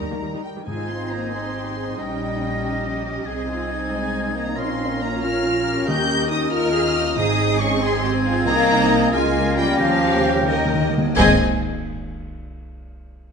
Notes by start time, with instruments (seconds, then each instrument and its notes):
Already playing: french horn section G3 D#4, violin section A#4 A#5
0.00 double bass section D#2, cello section D#3
0.11 viola section D#3 A#3, cello section D#3
0.22 double bass section D#2, cello section D#3, viola section D#3 G3
0.34 cello section D#3, viola section G3 D#4
0.44 french horn section G3, violin section G5
0.56 cello section D#3, viola section D#3 G3
0.65 double bass section G#1, timpani G#2, french horn section G#3, viola section C4 D#4, clarinet D#4, cello section F4, violin section G#4 C5 G#5, oboe D#5, flute G#6
0.88 french horn section C4, violin section C6
1.10 french horn section A#3, violin section A#5
1.32 french horn section C4, cello section D#4, violin section C6
1.54 cello section G4
1.76 cello section G#4
1.97 double bass section A#1, french horn section G3, clarinet C#4, viola section C#4, cello section D#4, violin section D#4 D#5 G5, flute A#6
2.63 cello section G4
3.25 double bass section C2, clarinet C4, viola section C4 D#4, violin section G#4, cello section G#4, oboe D#5, flute G#6
3.49 cello section F4
3.71 cello section D#4
3.90 french horn section G#3, cello section D#4, violin section G#5
4.34 french horn section A#3, violin section A#5
4.55 double bass section A#1, french horn section C4, clarinet C#4, viola section C#4 F4, violin section A#4 C#5 C6, oboe F5, flute A#6
5.01 french horn section A#3, violin section A#5
5.22 cello section C#4, french horn section F4, violin section F6
5.45 cello section F4
5.66 cello section G4
5.87 double bass section D#2, timpani D#3, viola section D#4, french horn section G4, oboe D#5, violin section D#5 G6
6.29 french horn section D#4, violin section D#6
6.50 french horn section F4, cello section A#4, violin section F6
6.75 cello section G#4
6.95 cello section G4
7.17 double bass section G#1, timpani G#2, clarinet C4, viola section C4, french horn section D#4, violin section G#4 D#6, cello section G#4
7.59 french horn section C#4, violin section C#6
7.81 french horn section C4, cello section G#4, violin section C6, flute G#6
8.04 cello section G4
8.25 cello section F4
8.45 double bass section C2, french horn section A#3, cello section D#4, viola section D#4, violin section D#5 A#5, oboe D#5
9.12 double bass section C#2, french horn section G#3, viola section A#3 F4, clarinet C#4, cello section F4, violin section A#4 G#5, oboe F5, flute A#6
9.57 french horn section G3, violin section G5
9.79 double bass section D#2, timpani D#3, french horn section F3, viola section G4, cello section G4, violin section C#5 F5, oboe G5
9.87 timpani D#3
9.95 timpani D#3
10.03 timpani D#3
10.11 timpani D#3
10.20 timpani D#3
10.34 timpani D#3
10.42 timpani D#3
10.47 french horn section D#3, timpani D#3, cello section A#4, violin section D#5
10.58 timpani D#3
10.65 timpani D#3
10.74 timpani D#3
10.81 timpani D#3
10.89 timpani D#3
10.98 timpani D#3
11.06 timpani D#3
11.16 double bass section G#1, cello section G#2, timpani G#2, french horn section G#3, viola section C4 G#4, clarinet C4, violin section G#4 D#5 G#5, oboe G#5, flute G#6, concert bass drum, crash